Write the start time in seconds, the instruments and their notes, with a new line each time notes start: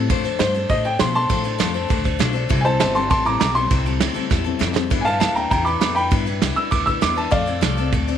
0.10 steel-string acoustic guitar F3 A3 D4 A4 C5, kick, ride
0.24 steel-string acoustic guitar D4 A4 C5, ride
0.39 upright bass G2, steel-string acoustic guitar F3 A3 D4 A4 C5, upright piano C5, snare, ride
0.54 steel-string acoustic guitar D4 A4 C5, ride
0.69 upright bass A2, steel-string acoustic guitar A3 D4 A4 C5, upright piano D#5, kick, ride
0.84 steel-string acoustic guitar D4 A4 C5, upright piano G5, ride
0.99 upright bass B2, steel-string acoustic guitar F3 A3 D4 A4 C5, upright piano C6, snare, ride
1.14 steel-string acoustic guitar D4 A4 C5, upright piano A5 C6, ride
1.29 upright bass A2, steel-string acoustic guitar F3 A3 D4 A4 C5, kick, ride
1.44 steel-string acoustic guitar D4 A4 C5, ride
1.59 upright bass F2, steel-string acoustic guitar F3 A3 D4 A4 C5, snare, ride
1.74 steel-string acoustic guitar D4 A4 C5, ride
1.89 upright bass D2, steel-string acoustic guitar A3 D4 A4 C5, kick, ride
2.04 steel-string acoustic guitar D4 A4 C5, kick, ride
2.19 upright bass B1, steel-string acoustic guitar F3 A3 D4 A4 C5, snare, ride
2.33 steel-string acoustic guitar D4 A4 C5, ride
2.49 upright bass C2, steel-string acoustic guitar C3 E3 G3 C4 E4 A4, kick, ride
2.61 steel-string acoustic guitar A4, upright piano C5 G#5
2.65 steel-string acoustic guitar G3 C4 E4, upright piano A5, ride
2.80 upright bass G1, steel-string acoustic guitar C3 E3 G3 C4 E4 A4, upright piano C5 A5, snare, ride
2.95 steel-string acoustic guitar G3 C4 E4 A4, upright piano A5 C6, ride
3.10 upright bass A1, steel-string acoustic guitar G3 C4 E4 A4, upright piano A5 C6, kick, ride
3.25 steel-string acoustic guitar G3 C4 E4 A4, upright piano A#5 D6, ride
3.40 upright bass B1, steel-string acoustic guitar C3 E3 G3 C4 E4 A4, upright piano A#5 D6, snare, ride
3.55 steel-string acoustic guitar G3 C4 E4 A4, upright piano C6, ride
3.70 upright bass C2, steel-string acoustic guitar C3 E3 G3 C4 E4 A4, kick, ride
3.86 steel-string acoustic guitar G3 C4 E4 A4, ride
4.00 upright bass D2, steel-string acoustic guitar C3 E3 G3 C4 E4 A4, snare, ride
4.14 steel-string acoustic guitar G3 C4 E4 A4, ride
4.30 upright bass E2, steel-string acoustic guitar G3 C4 E4 A4, kick, snare
4.44 steel-string acoustic guitar G3 C4 E4 A4
4.59 upright bass F2, steel-string acoustic guitar C3 E3 G3 C4 E4 A4, snare
4.74 steel-string acoustic guitar G3 C4 E4 A4, snare
4.90 upright bass G2, steel-string acoustic guitar G3 B3 D4 E4 B4, kick, ride
5.01 upright piano F5 G#5
5.05 steel-string acoustic guitar D4 E4 B4, upright piano A5, ride
5.20 upright bass D#2, steel-string acoustic guitar G3 B3 D4 E4 B4, upright piano F5 A5, snare, ride
5.35 steel-string acoustic guitar D4 E4 B4, upright piano G5 A#5, ride
5.50 upright bass E2, steel-string acoustic guitar B3 D4 E4 B4, upright piano G5 A#5, kick, ride
5.64 steel-string acoustic guitar D4 E4 B4, upright piano B5 D6, ride
5.80 upright bass F2, steel-string acoustic guitar G3 B3 D4 E4 B4, upright piano B5 D6, snare, ride
5.95 steel-string acoustic guitar D4 E4 B4, upright piano G5 B5, ride
6.11 upright bass G2, steel-string acoustic guitar G3 B3 D4 E4 B4, kick, ride
6.26 steel-string acoustic guitar D4 E4 B4, ride
6.42 upright bass C2, steel-string acoustic guitar G3 B3 D4 E4 B4, snare, ride
6.56 steel-string acoustic guitar D4 E4 B4, upright piano E6, ride
6.71 upright bass D2, steel-string acoustic guitar B3 D4 E4 B4, upright piano D6, kick, ride
6.86 steel-string acoustic guitar D4 E4 B4, upright piano E6, kick, ride
7.01 upright bass E2, steel-string acoustic guitar G3 B3 D4 E4 B4, upright piano D6, snare, ride
7.15 steel-string acoustic guitar D4 E4 B4, upright piano A5, ride
7.31 upright bass F2, steel-string acoustic guitar F3 A3 C4 A4 D5, upright piano D5 F5, kick, ride
7.46 steel-string acoustic guitar C4 A4 D5, ride
7.61 upright bass C2, steel-string acoustic guitar F3 A3 C4 A4 D5, snare, ride
7.77 steel-string acoustic guitar C4 A4 D5, ride
7.93 upright bass D2, steel-string acoustic guitar A3 C4 A4 D5, kick, ride
8.08 steel-string acoustic guitar C4 A4 D5, ride